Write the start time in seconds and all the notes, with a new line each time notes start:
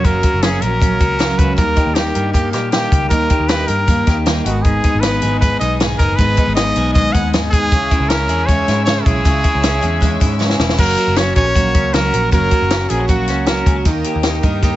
Already playing: C#4 F#4 A#4
0.04 F#1 F#2 C#3 F#3 A#3 C#4 A#4, kick, closed hi-hat
0.23 F#3 A#3 C#4 F#4, kick, closed hi-hat
0.34 F#1
0.42 F#2 C#3 F#3 A#3 C#4 G#4, snare, closed hi-hat
0.61 A#1 F#3 A#3 C#4 A#4, closed hi-hat
0.80 C#3 F#3 A#3 C#4, kick, closed hi-hat
1.00 C#2 F#3 A#3 C#4 F#4, kick, closed hi-hat
1.19 F#2 C#3 F#3 A#3 C#4 A#4, snare, closed hi-hat
1.38 C#2 F#4 B4, kick, closed hi-hat
1.56 D#2 D#3 G3 A#3 D#4 A#4, kick, closed hi-hat
1.76 G3 A#3 D#4 G4, kick, closed hi-hat
1.86 D#2
1.95 D#3 G3 A#3 D#4 G4, snare, closed hi-hat
2.14 G2 G3 A#3 D#4 A#4, closed hi-hat
2.32 D#3 G3 A#3 D#4 G4, kick, closed hi-hat
2.52 A#2 G3 A#3 D#4 G4, snare, closed hi-hat
2.71 D#3 G3 A#3 D#4 G4 A#4, snare, closed hi-hat
2.92 C#2 G4, kick, closed hi-hat
3.09 D#2 D#3 G3 A#3 D#4 A#4, kick, closed hi-hat
3.30 G3 A#3 D#4 G4, kick, closed hi-hat
3.39 D#2
3.48 D#3 G3 A#3 D#4 B4, snare, closed hi-hat
3.67 G2 G3 A#3 D#4 A#4, closed hi-hat
3.87 D#3 G3 A#3 D#4, kick, closed hi-hat
4.06 D#2 G3 A#3 D#4 G4, kick, snare, closed hi-hat
4.26 D#3 G3 A#3 D#4 A#4, snare, closed hi-hat
4.44 G#1 G#2 D#3 G#3 B3 D#4 F#4, closed hi-hat
4.63 G#2 G#4 B4 D#5 G#5 D#6, kick, closed hi-hat
4.83 G#3 B3 D#4, kick, closed hi-hat
4.95 G#1
5.00 G#2 D#3 G#3 B3 B4, snare, closed hi-hat
5.04 B3 D#4
5.22 G#1 G#3 B3 D#4 G#4, closed hi-hat
5.40 D#3 G#3 B3 B4, kick, closed hi-hat
5.45 D#4
5.59 B1 B3 D#4 D#5, closed hi-hat
5.63 G#3
5.80 G#2 D#3 G#3 B3 D#4 G#4, snare, closed hi-hat
5.98 F#1 D#4 A#4, kick, closed hi-hat
6.16 G#1 G#2 D#3 G#3 B4, kick, closed hi-hat
6.20 B3 D#4
6.37 G#3 B3 D#4, kick, closed hi-hat
6.47 G#1
6.55 G#2 D#3 G#3 B3 D#4 D#5, snare, closed hi-hat
6.75 B1 G#3 B3 D#4 G#4, closed hi-hat
6.93 D#3 G#3 B3 D#5, kick, closed hi-hat
6.97 D#4
7.12 D#2 B3 D#4 F#5, kick, closed hi-hat
7.17 G#3
7.33 G#2 D#3 G#3 B3 D#4 G#4, snare, closed hi-hat
7.50 D#4 G#4, kick, closed hi-hat
7.71 C#2 C#3 G#3 C#4 E4 C#5 E5 E6, kick, closed hi-hat
7.90 G#3 C#4 E4, kick, closed hi-hat
8.00 C#2
8.09 C#3 G#3 C#4 E4 A#4, snare, closed hi-hat
8.28 E2 G#3 C#4 E4 G#4, closed hi-hat
8.47 C#3 G#3 C#4 E4 C#5, kick, closed hi-hat
8.67 G#2 G#3 C#4 E4, snare, closed hi-hat
8.85 C#3 G#3 C#4 G#4 C#5, snare, closed hi-hat
8.89 E4
9.05 B1 E4 G#4, kick, closed hi-hat
9.25 C#2 C#3 G#3 C#4 E4, kick, closed hi-hat
9.43 G#3 C#4 E4, kick, closed hi-hat
9.55 C#2
9.62 C#3 G#3 C#4 E4, snare, closed hi-hat
9.81 E2 G#3 C#4 E4 G#4, closed hi-hat
10.01 C#3 G#3 C#4 E4, kick, closed hi-hat
10.20 G#2 G#3 C#4 E4, kick, closed hi-hat
10.39 C#3 G#3 C#4 E4 G#4, snare
10.50 snare
10.59 E1 E4, snare
10.69 snare
10.77 F#1 F#3 A#3 C#4 F#4 A#4 C#5 F#5 C#6, kick, crash
10.97 F#4, closed hi-hat
11.07 F#1
11.15 F#3 A#3 C#4 F#4 C#5, snare, closed hi-hat
11.35 A#1 A#3 C#4 F#4 G#4 C#5, kick, closed hi-hat
11.46 A#4
11.54 F#3 A#3 C#4 F#4, kick, closed hi-hat
11.75 C#2 C#4, kick, closed hi-hat
11.93 C#2 F#3 A#3 C#4 F#4 A#4, snare, closed hi-hat
12.14 A#1 A#4, closed hi-hat
12.31 F#1 F#3 A#3 C#4 F#4 A#4, kick, closed hi-hat
12.51 F#4, kick, closed hi-hat
12.62 F#1
12.70 F#3 A#3 C#4 F#4, snare, closed hi-hat
12.89 A#1 A#3 C#4 F#4 G#4, closed hi-hat
13.00 A#4
13.08 F#3 A#3 C#4 F#4, kick, closed hi-hat
13.28 C#2 C#4, snare, closed hi-hat
13.46 F#3 A#3 C#4 F#4 A#4, snare, closed hi-hat
13.66 C#2 G#4, kick, closed hi-hat
13.76 A#4
13.85 D#2 D#3 A#3 D#4 G4 D#5 G5 D#6, kick, closed hi-hat
14.04 G4, closed hi-hat
14.16 D#2
14.23 D#3 A#3 D#4 G4, snare, closed hi-hat
14.43 G2 A#3 D#4 G4 A#4, kick, closed hi-hat
14.63 D#3 A#3 D#4 G4, kick, closed hi-hat